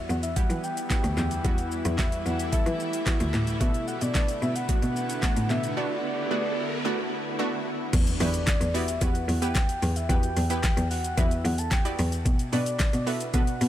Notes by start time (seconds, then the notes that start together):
Already playing: E3 G3 B3 E4 F#4 E5
0.09 E2 F#5, shaker
0.23 E5, closed hi-hat, shaker
0.36 G3 B3 E4 G4 F#5, kick, closed hi-hat, shaker
0.50 E3, closed hi-hat, shaker
0.63 G5, shaker
0.77 closed hi-hat, shaker
0.90 G3 B3 E4 F#4, kick, snare, clap, closed hi-hat, shaker
1.04 D2, closed hi-hat, shaker
1.17 E2 G5, clap, shaker
1.31 closed hi-hat, shaker
1.44 E2 G3 A3 B3 E4 F#4 F#5, kick, closed hi-hat, shaker
1.58 closed hi-hat, shaker
1.71 shaker
1.85 E2 E5, closed hi-hat, shaker
1.98 G3 B3 E4 F#4, kick, snare, clap, closed hi-hat, shaker
2.12 closed hi-hat, shaker
2.25 E2 F#5, shaker
2.39 closed hi-hat, shaker
2.52 G3 B3 E4 A4 E5, kick, closed hi-hat, shaker
2.66 E3, closed hi-hat, shaker
2.80 shaker
2.93 closed hi-hat, shaker
3.06 G3 B3 E4 F#4, kick, snare, clap, closed hi-hat, shaker
3.20 D2, closed hi-hat, shaker
3.34 A2, clap, shaker
3.47 closed hi-hat, shaker
3.60 B2 D3 A3 B3 D4 F#4 E5, kick, closed hi-hat, riser, shaker
3.74 closed hi-hat, shaker
3.88 F#5, shaker
4.01 B2 D5, closed hi-hat, shaker
4.15 A3 B3 D4 A4, kick, snare, clap, closed hi-hat, shaker
4.28 closed hi-hat, shaker
4.42 B2 E5, shaker
4.55 F#5, closed hi-hat, shaker
4.69 A3 B3 D4 F#4, kick, closed hi-hat, shaker
4.82 B2, closed hi-hat, shaker
4.96 shaker
5.10 closed hi-hat, shaker
5.23 A3 B3 D4 F#4, kick, snare, clap, closed hi-hat, shaker
5.36 A2, closed hi-hat, shaker
5.50 B2 E5, clap, shaker
5.64 closed hi-hat, shaker
5.77 A3 B3 D4 E4 F#4 D5
6.31 A3 B3 D4 F#4
6.85 A3 B3 D4 F#4
7.39 A3 B3 D4 F#4
7.93 E2, kick, closed hi-hat, crash, impact, shaker
8.07 closed hi-hat, shaker
8.20 E2 B3 E4 F#4 G4 B4 D5, open hi-hat, shaker
8.34 closed hi-hat, shaker
8.47 kick, snare, clap, closed hi-hat, shaker
8.61 E2, closed hi-hat, shaker
8.74 B3 E4 F#4 G4 D5 E5, open hi-hat, shaker
8.88 closed hi-hat, shaker
9.01 E2 B3 E4 F#4 G4 B4 F#5, kick, closed hi-hat, shaker
9.15 closed hi-hat, shaker
9.28 E2, open hi-hat, shaker
9.42 B3 E4 G4 B4 G5, closed hi-hat, shaker
9.55 kick, snare, clap, closed hi-hat, shaker
9.69 closed hi-hat, shaker
9.82 E2, open hi-hat, shaker
9.96 E5, closed hi-hat, shaker
10.09 E2 B3 E4 F#4 G4 B4 G5, kick, closed hi-hat, shaker
10.23 closed hi-hat, shaker
10.37 E2, open hi-hat, shaker
10.50 B3 E4 G4 B4 G5, closed hi-hat, shaker
10.64 kick, snare, clap, closed hi-hat, shaker
10.77 E2, closed hi-hat, shaker
10.90 F#5, open hi-hat, shaker
11.04 closed hi-hat, shaker
11.17 E2 B3 E4 F#4 G4 B4 E5, kick, closed hi-hat, shaker
11.31 closed hi-hat, shaker
11.45 E2 F#5, open hi-hat, shaker
11.58 A5, closed hi-hat, shaker
11.71 G5, kick, snare, clap, closed hi-hat, shaker
11.85 B3 E4 F#4 G4 D5, closed hi-hat, shaker
11.99 E2, open hi-hat, shaker
12.12 closed hi-hat, shaker
12.26 B2, kick, closed hi-hat, shaker
12.39 closed hi-hat, shaker
12.52 B2 B3 D4 F#4 A4 B4 D5, open hi-hat, shaker
12.66 closed hi-hat, shaker
12.80 kick, snare, clap, closed hi-hat, shaker
12.93 B2, closed hi-hat, shaker
13.06 B3 D4 F#4 A4 B4 E5, open hi-hat, shaker
13.21 closed hi-hat, shaker
13.34 B2 B3 D4 F#4 A4 B4 F#5, kick, closed hi-hat, shaker
13.47 closed hi-hat, shaker
13.61 B2, open hi-hat, shaker